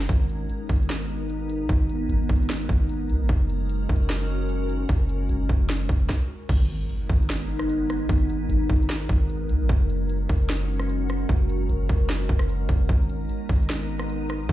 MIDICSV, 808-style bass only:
0, 0, Header, 1, 2, 480
1, 0, Start_track
1, 0, Key_signature, 5, "minor"
1, 0, Tempo, 400000
1, 112, Time_signature, 4, 2, 24, 8
1, 17431, End_track
2, 0, Start_track
2, 0, Title_t, "808-style bass"
2, 0, Program_c, 0, 38
2, 109, Note_on_c, 0, 32, 114
2, 571, Note_off_c, 0, 32, 0
2, 834, Note_on_c, 0, 32, 100
2, 1985, Note_off_c, 0, 32, 0
2, 2030, Note_on_c, 0, 32, 113
2, 2492, Note_off_c, 0, 32, 0
2, 2512, Note_on_c, 0, 32, 103
2, 2742, Note_off_c, 0, 32, 0
2, 2753, Note_on_c, 0, 32, 100
2, 3213, Note_off_c, 0, 32, 0
2, 3231, Note_on_c, 0, 32, 108
2, 3711, Note_on_c, 0, 39, 101
2, 3729, Note_off_c, 0, 32, 0
2, 3831, Note_on_c, 0, 32, 100
2, 3849, Note_off_c, 0, 39, 0
2, 3942, Note_off_c, 0, 32, 0
2, 3950, Note_on_c, 0, 30, 112
2, 4641, Note_off_c, 0, 30, 0
2, 4672, Note_on_c, 0, 30, 105
2, 5824, Note_off_c, 0, 30, 0
2, 5870, Note_on_c, 0, 30, 115
2, 6331, Note_off_c, 0, 30, 0
2, 6351, Note_on_c, 0, 30, 101
2, 6581, Note_off_c, 0, 30, 0
2, 6592, Note_on_c, 0, 30, 102
2, 7052, Note_off_c, 0, 30, 0
2, 7070, Note_on_c, 0, 30, 103
2, 7301, Note_off_c, 0, 30, 0
2, 7791, Note_on_c, 0, 32, 120
2, 8252, Note_off_c, 0, 32, 0
2, 8514, Note_on_c, 0, 32, 103
2, 9665, Note_off_c, 0, 32, 0
2, 9713, Note_on_c, 0, 32, 119
2, 10173, Note_off_c, 0, 32, 0
2, 10192, Note_on_c, 0, 32, 106
2, 10422, Note_off_c, 0, 32, 0
2, 10435, Note_on_c, 0, 32, 109
2, 10894, Note_off_c, 0, 32, 0
2, 10912, Note_on_c, 0, 32, 111
2, 11391, Note_on_c, 0, 39, 106
2, 11409, Note_off_c, 0, 32, 0
2, 11513, Note_on_c, 0, 32, 106
2, 11531, Note_off_c, 0, 39, 0
2, 11626, Note_off_c, 0, 32, 0
2, 11631, Note_on_c, 0, 30, 118
2, 12322, Note_off_c, 0, 30, 0
2, 12353, Note_on_c, 0, 30, 108
2, 13504, Note_off_c, 0, 30, 0
2, 13551, Note_on_c, 0, 30, 116
2, 14012, Note_off_c, 0, 30, 0
2, 14031, Note_on_c, 0, 30, 106
2, 14262, Note_off_c, 0, 30, 0
2, 14274, Note_on_c, 0, 30, 103
2, 14733, Note_off_c, 0, 30, 0
2, 14751, Note_on_c, 0, 30, 106
2, 15212, Note_off_c, 0, 30, 0
2, 15227, Note_on_c, 0, 30, 109
2, 15459, Note_off_c, 0, 30, 0
2, 15470, Note_on_c, 0, 32, 112
2, 15931, Note_off_c, 0, 32, 0
2, 16192, Note_on_c, 0, 32, 100
2, 17344, Note_off_c, 0, 32, 0
2, 17391, Note_on_c, 0, 32, 117
2, 17431, Note_off_c, 0, 32, 0
2, 17431, End_track
0, 0, End_of_file